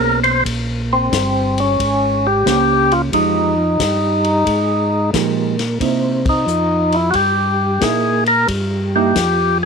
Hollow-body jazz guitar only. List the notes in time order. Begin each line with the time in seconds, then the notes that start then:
Already playing: A#3 C#4 G#4 C5
2.46 A#3 C#4 C5
3.13 F3 G#3 D#4 G4
5.14 F3 G#3 D#4 G4
5.81 A#3 D#4 E4
7.83 A#3 D#4 E4
8.96 A#3 D#4 E4